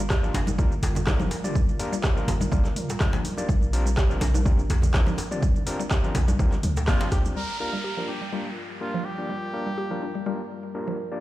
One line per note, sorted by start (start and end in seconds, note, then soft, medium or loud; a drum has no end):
0.00 0.30 G1 loud
0.00 7.32 G3 medium
0.00 3.45 F4 medium
0.00 7.32 A#4 medium
0.10 0.23 G4 loud
0.10 kick loud
0.10 cross-stick loud
0.10 clap loud
0.10 shaker medium
0.23 0.29 F3 medium
0.23 0.36 A#3 medium
0.23 0.36 D4 medium
0.23 0.36 F4 medium
0.23 0.36 G4 medium
0.23 0.36 A#4 loud
0.23 shaker soft
0.34 0.79 G1 medium
0.34 0.46 D4 medium
0.34 clap soft
0.34 mid tom medium
0.34 open hi-hat medium
0.34 djembe slap loud
0.34 djembe tone medium
0.47 0.57 G3 medium
0.47 high conga loud
0.47 shaker medium
0.58 0.71 G3 loud
0.58 0.73 A#3 medium
0.58 0.73 D4 medium
0.58 0.73 F4 medium
0.58 0.73 G4 medium
0.58 0.73 A#4 loud
0.58 kick loud
0.58 shaker medium
0.72 shaker soft
0.83 1.21 G1 loud
0.83 open hi-hat medium
0.83 djembe slap medium
0.83 low conga medium
0.95 djembe tone medium
0.95 low conga loud
0.95 shaker medium
1.07 1.29 A#3 medium
1.07 1.29 D4 medium
1.07 1.29 F4 medium
1.07 1.29 G4 medium
1.07 1.29 A#4 medium
1.07 kick loud
1.07 cross-stick loud
1.07 clap loud
1.07 high conga loud
1.07 shaker medium
1.20 1.28 F1 loud
1.20 1.30 F3 loud
1.20 high conga loud
1.20 shaker soft
1.31 open hi-hat medium
1.31 djembe slap medium
1.44 1.57 A#3 medium
1.44 1.57 D4 medium
1.44 1.57 F4 medium
1.44 1.57 G4 medium
1.44 1.57 D5 medium
1.44 mid tom medium
1.44 shaker medium
1.55 1.68 G3 loud
1.55 kick loud
1.55 shaker medium
1.69 high conga medium
1.69 shaker soft
1.79 1.94 A#3 medium
1.79 1.94 D4 medium
1.79 1.94 F4 medium
1.79 1.94 G4 medium
1.79 1.94 A#4 loud
1.79 open hi-hat medium
1.79 djembe tone medium
1.92 1.99 G3 loud
1.92 shaker medium
2.04 2.16 G4 loud
2.04 kick loud
2.04 cross-stick loud
2.04 clap loud
2.04 shaker medium
2.16 2.23 F3 medium
2.16 2.30 A#3 medium
2.16 2.30 D4 medium
2.16 2.30 F4 medium
2.16 2.30 G4 medium
2.16 2.30 A#4 loud
2.16 shaker soft
2.28 2.47 G1 medium
2.28 2.40 D4 medium
2.28 mid tom medium
2.28 open hi-hat medium
2.28 djembe slap loud
2.28 djembe tone medium
2.28 low conga loud
2.41 2.50 G3 medium
2.41 high conga loud
2.41 shaker medium
2.52 2.62 F1 loud
2.52 2.64 G3 loud
2.52 2.67 A#3 medium
2.52 2.67 D4 medium
2.52 2.67 F4 medium
2.52 2.67 G4 medium
2.52 2.67 A#4 loud
2.52 kick loud
2.52 shaker medium
2.65 clap soft
2.65 djembe tone medium
2.65 shaker soft
2.76 mid tom medium
2.76 open hi-hat medium
2.76 high conga medium
2.90 djembe slap medium
2.90 shaker medium
3.00 3.11 C2 loud
3.00 3.23 A#3 medium
3.00 3.23 D4 medium
3.00 3.23 F4 medium
3.00 3.23 G4 medium
3.00 3.23 A#4 medium
3.00 kick loud
3.00 cross-stick loud
3.00 clap loud
3.00 shaker medium
3.13 3.23 F3 loud
3.13 djembe slap loud
3.13 shaker soft
3.25 open hi-hat medium
3.25 high conga medium
3.37 3.48 A#3 medium
3.37 3.47 D4 medium
3.37 3.47 F4 medium
3.37 3.48 G4 medium
3.37 3.48 D5 medium
3.37 high conga medium
3.37 shaker medium
3.49 4.17 A#1 loud
3.49 3.61 G3 loud
3.49 7.32 D4 medium
3.49 kick loud
3.49 shaker medium
3.62 high conga medium
3.62 shaker soft
3.73 3.88 C4 medium
3.73 3.88 D4 medium
3.73 3.88 F4 medium
3.73 3.88 G4 medium
3.73 3.88 A#4 loud
3.73 open hi-hat medium
3.86 3.92 G3 medium
3.86 shaker medium
3.97 4.10 G4 loud
3.97 kick loud
3.97 cross-stick loud
3.97 clap loud
3.97 shaker medium
4.10 4.16 F3 medium
4.10 4.23 C4 medium
4.10 4.23 D4 medium
4.10 4.23 F4 medium
4.10 4.23 G4 medium
4.10 4.23 A#4 loud
4.10 shaker soft
4.21 4.66 A#1 medium
4.21 4.33 D4 medium
4.21 clap soft
4.21 mid tom medium
4.21 open hi-hat medium
4.21 djembe slap loud
4.21 djembe tone medium
4.34 4.44 G3 medium
4.34 high conga loud
4.34 shaker medium
4.45 4.58 G3 loud
4.45 4.60 C4 medium
4.45 4.60 D4 medium
4.45 4.60 F4 medium
4.45 4.60 G4 medium
4.45 4.60 A#4 loud
4.45 kick loud
4.45 shaker medium
4.59 shaker soft
4.70 5.09 A#1 loud
4.70 open hi-hat medium
4.70 djembe slap loud
4.70 low conga medium
4.82 djembe tone medium
4.82 low conga medium
4.82 shaker medium
4.94 5.16 C4 medium
4.94 5.16 D4 medium
4.94 5.16 F4 medium
4.94 5.16 G4 medium
4.94 5.16 A#4 medium
4.94 kick loud
4.94 cross-stick loud
4.94 clap loud
4.94 high conga medium
4.94 shaker medium
5.07 5.16 G1 loud
5.07 5.17 F3 loud
5.07 high conga medium
5.07 shaker soft
5.18 open hi-hat medium
5.18 djembe slap medium
5.31 5.44 C4 medium
5.31 5.44 D4 medium
5.31 5.44 F4 medium
5.31 5.44 G4 medium
5.31 5.44 D5 medium
5.31 mid tom medium
5.31 shaker medium
5.42 5.55 G3 loud
5.42 kick loud
5.42 shaker medium
5.56 high conga medium
5.56 shaker soft
5.66 5.81 C4 medium
5.66 5.81 D4 medium
5.66 5.81 F4 medium
5.66 5.81 G4 medium
5.66 5.81 A#4 loud
5.66 open hi-hat loud
5.66 djembe tone medium
5.80 5.86 G3 medium
5.80 shaker medium
5.91 6.03 G4 loud
5.91 kick loud
5.91 cross-stick loud
5.91 clap loud
5.91 shaker medium
6.04 6.10 F3 medium
6.04 6.17 C4 medium
6.04 6.17 D4 medium
6.04 6.17 F4 medium
6.04 6.17 G4 medium
6.04 6.17 A#4 loud
6.04 shaker soft
6.15 6.34 A#1 medium
6.15 6.27 D4 medium
6.15 mid tom medium
6.15 open hi-hat medium
6.15 djembe slap loud
6.15 djembe tone medium
6.15 low conga loud
6.28 6.38 G3 medium
6.28 high conga loud
6.28 shaker medium
6.39 6.49 G1 loud
6.39 6.52 G3 loud
6.39 6.54 C4 medium
6.39 6.54 D4 medium
6.39 6.54 F4 medium
6.39 6.54 G4 medium
6.39 6.54 A#4 loud
6.39 kick loud
6.39 low conga medium
6.39 shaker medium
6.52 clap soft
6.52 djembe tone medium
6.52 shaker soft
6.63 6.89 D2 medium
6.63 mid tom medium
6.63 open hi-hat medium
6.63 high conga medium
6.77 djembe slap medium
6.77 shaker medium
6.88 6.98 F1 medium
6.88 6.99 A#3 medium
6.88 7.35 C4 medium
6.88 7.35 D4 medium
6.88 7.10 F4 medium
6.88 7.35 F4 medium
6.88 7.35 G4 medium
6.88 7.35 C5 loud
6.88 kick loud
6.88 cross-stick loud
6.88 clap loud
6.88 shaker medium
7.01 7.07 G3 medium
7.01 djembe slap loud
7.01 shaker soft
7.11 7.31 D2 medium
7.11 7.22 G4 medium
7.11 kick medium
7.11 cross-stick medium
7.11 open hi-hat medium
7.11 high conga medium
7.25 high conga medium
7.25 shaker medium
7.36 11.20 G3 medium
7.36 7.48 G3 loud
7.36 11.19 F4 medium
7.36 7.58 A#4 loud
7.36 11.20 A#4 medium
7.36 downlifter medium
7.60 7.75 A#3 medium
7.60 7.75 D4 medium
7.60 7.75 F4 medium
7.60 7.75 G4 medium
7.60 8.05 A#4 loud
7.60 7.75 A#4 loud
7.73 7.79 G3 medium
7.84 7.97 G4 medium
7.97 8.03 F3 medium
7.97 8.10 A#3 medium
7.97 8.10 D4 medium
7.97 8.10 F4 medium
7.97 8.10 G4 medium
7.97 8.10 A#4 loud
8.08 8.20 D4 medium
8.08 8.53 G4 medium
8.22 8.32 G3 medium
8.33 8.45 G3 loud
8.33 8.47 A#3 medium
8.33 8.47 D4 medium
8.33 8.47 F4 medium
8.33 8.47 G4 medium
8.33 8.47 A#4 medium
8.81 9.03 A#3 medium
8.81 9.03 D4 medium
8.81 9.06 F4 loud
8.81 9.03 F4 medium
8.81 9.03 G4 medium
8.81 9.03 A#4 medium
8.94 9.04 F3 loud
9.05 10.50 G4 loud
9.18 9.31 A#3 medium
9.18 9.31 D4 medium
9.18 9.31 F4 medium
9.18 9.31 G4 medium
9.18 9.31 D5 medium
9.29 9.42 G3 loud
9.54 9.68 A#3 medium
9.54 9.68 D4 medium
9.54 9.68 F4 medium
9.54 9.68 G4 medium
9.54 9.68 A#4 loud
9.67 9.73 G3 medium
9.78 9.90 G4 medium
9.91 9.97 F3 medium
9.91 10.04 A#3 medium
9.91 10.04 D4 medium
9.91 10.04 F4 medium
9.91 10.04 G4 medium
9.91 10.04 A#4 medium
10.02 10.14 D4 medium
10.15 10.25 G3 medium
10.26 10.39 G3 loud
10.26 10.41 A#3 medium
10.26 10.41 D4 medium
10.26 10.41 F4 medium
10.26 10.41 G4 medium
10.26 10.41 A#4 medium
10.75 10.97 A#3 medium
10.75 10.97 D4 medium
10.75 10.97 F4 medium
10.75 10.97 G4 medium
10.75 10.97 A#4 medium
10.88 10.98 F3 loud
11.12 11.20 A#3 medium
11.12 11.20 D4 medium
11.12 11.20 F4 medium
11.12 11.20 G4 medium
11.12 11.20 D5 medium